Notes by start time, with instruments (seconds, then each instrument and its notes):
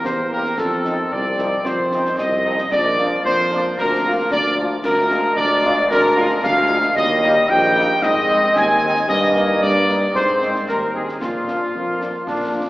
Already playing: trombone section G3 A#3
0.04 tuba E2, flute section C5, woodwind section C5, trumpet section C5, concert bass drum, snare
0.31 french horn section G3 A#3 G4, flute section A#4, woodwind section A#4, trumpet section A#4
0.45 snare
0.58 tuba F2, trombone section D#3 C4, woodwind section A4, flute section A4, trumpet section A4, concert bass drum, snare, crash
0.85 french horn section F3 C4 D#4, snare
1.11 tuba C2, flute section D5, trumpet section D5, woodwind section D5, concert bass drum
1.38 french horn section F3 C4 D#4, snare
1.64 tuba F2, flute section C5, woodwind section C5, trumpet section C5, concert bass drum, snare
1.92 french horn section F3 C4 D#4, snare
2.05 snare
2.18 tuba C2, trumpet section D#5, woodwind section D#5, flute section D#5, concert bass drum, snare
2.45 french horn section F3 C4 D#4
2.58 snare
2.70 tuba A#1, trombone section F3 A#3, flute section D5, trumpet section D5, woodwind section D5, concert bass drum, snare
2.97 french horn section F3 A#3 D4, snare
3.23 tuba F2, woodwind section C5, flute section C5, trumpet section C5, concert bass drum
3.51 french horn section F3 A#3 D4, snare
3.76 tuba D2, flute section A#4, woodwind section A#4, trumpet section A#4, concert bass drum, snare
4.04 french horn section F3 A#3 F4
4.30 tuba D2, flute section D5, woodwind section D5, trumpet section D5, concert bass drum, snare
4.57 french horn section F3 A#3 F4
4.84 tuba D2, trombone section F3 G#3, flute section A#4, woodwind section A#4, trumpet section A#4, concert bass drum, snare, crash
5.10 french horn section G#3 A#3 F4, snare
5.37 tuba D2, flute section D5, trumpet section D5, woodwind section D5, concert bass drum
5.62 french horn section G#3 A#3 F4, snare
5.90 tuba D2, flute section A#4, woodwind section A#4, trumpet section A#4, concert bass drum, snare
6.16 french horn section G#3 A#3 F4, snare
6.30 snare
6.42 tuba D2, flute section F5, woodwind section F5, trumpet section F5, concert bass drum, snare
6.69 french horn section G#3 A#3 F4
6.83 snare
6.94 tuba D#2, trombone section D#3 G3, flute section D#5, trumpet section D#5, woodwind section D#5, concert bass drum, snare
7.22 french horn section G3 A#3 D#4, snare
7.48 tuba A#1, flute section G5, trumpet section G5, woodwind section G5, concert bass drum
7.76 french horn section G3 A#3 D#4, snare
8.01 tuba G#2, trombone section C4, flute section D#5, trumpet section D#5, woodwind section D#5, concert bass drum, snare
8.29 french horn section G#3 C4 D#4, snare
8.43 snare
8.54 tuba D#2, flute section G#5, woodwind section G#5, trumpet section G#5, concert bass drum, snare
8.83 french horn section G#3 C4 D#4
8.95 snare
9.07 tuba G2, trombone section D#3 A#3, flute section D#5, trumpet section D#5, woodwind section D#5, concert bass drum, snare, crash
9.35 french horn section A#3 D#4, snare
9.60 tuba G2, flute section D5, woodwind section D5, trumpet section D5, concert bass drum
9.88 french horn section A#3 D#4, snare
10.13 tuba G#2, trombone section C4, flute section C5, woodwind section C5, trumpet section C5, concert bass drum, snare
10.41 french horn section G#3 C4 D#4, snare
10.55 snare
10.66 tuba D#2, flute section A#4, trumpet section A#4, woodwind section A#4, concert bass drum, snare
10.93 french horn section G#3 C4 D#4, flute section G#4, woodwind section G#4, trumpet section G#4
11.08 snare
11.18 tuba A#2, trombone section F3 D4, flute section F4, woodwind section F4, trumpet section F4, concert bass drum, snare
11.47 french horn section F3 A#3 D4, snare
11.74 tuba F2, trombone section A#3, concert bass drum
11.99 french horn section F3 A#3 D4, snare
12.27 tuba A#2, trombone section D4, concert bass drum, snare
12.53 french horn section F3 A#3 D4